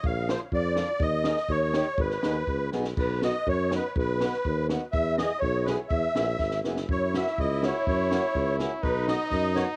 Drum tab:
CC |--------|--------|--------|x-------|
SD |--o---o-|--oo--o-|-oo---oo|--o---o-|
BD |o---o---|o---o---|o---o---|o---o---|

CC |--------|--------|--------|--------|
SD |--oo--o-|--o---o-|--o-oooo|--oo--o-|
BD |o---o---|o---o---|o---o---|o---o---|

CC |--------|--------|
SD |--o---o-|--o-o-o-|
BD |o---o---|o---o---|